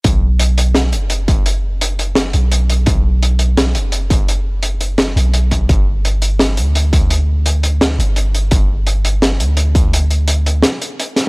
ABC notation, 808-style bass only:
X:1
M:4/4
L:1/8
Q:"Swing 16ths" 1/4=170
K:Bm
V:1 name="808-style bass" clef=bass
B,,,4- B,,, F,,,3- | F,,,4- F,,, B,,,3 | B,,,4- B,,, F,,,3- | F,,,4- F,,, B,,,3 |
G,,,4- G,,, D,,3- | D,,4- D,, G,,,3 | G,,,4- G,,, D,,3- | D,,4 z4 |]